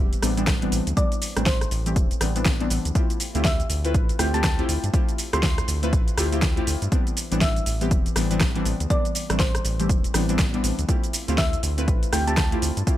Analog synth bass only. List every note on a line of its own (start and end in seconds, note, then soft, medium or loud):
0.00 0.15 E1 medium
0.23 0.66 A1 medium
0.72 0.81 A1 medium
0.87 0.93 D2 medium
1.37 1.65 A1 loud
1.71 1.98 A1 medium
1.96 2.13 E1 medium
2.21 2.65 A1 medium
2.70 2.80 A1 medium
2.85 2.92 D2 medium
3.35 3.64 D2 loud
3.70 3.96 D2 medium
3.94 4.12 A1 medium
4.19 4.63 D2 medium
4.69 4.78 D2 medium
4.84 4.90 G2 medium
5.33 5.62 D2 medium
5.68 5.94 D2 medium
5.93 6.10 A1 medium
6.18 6.61 D2 medium
6.67 6.77 D2 loud
6.82 6.88 G2 medium
7.32 7.60 A1 loud
7.66 7.93 A1 medium
7.91 8.09 E1 medium
8.16 8.60 A1 medium
8.66 8.75 A1 medium
8.80 8.87 D2 medium
9.30 9.59 A1 loud
9.65 9.91 A1 medium
9.89 10.07 E1 medium
10.14 10.58 A1 medium
10.64 10.73 A1 medium
10.79 10.85 D2 medium
11.28 11.57 D2 loud
11.63 11.89 D2 medium
11.88 12.05 A1 medium
12.13 12.56 D2 medium
12.62 12.72 D2 medium
12.77 12.83 G2 medium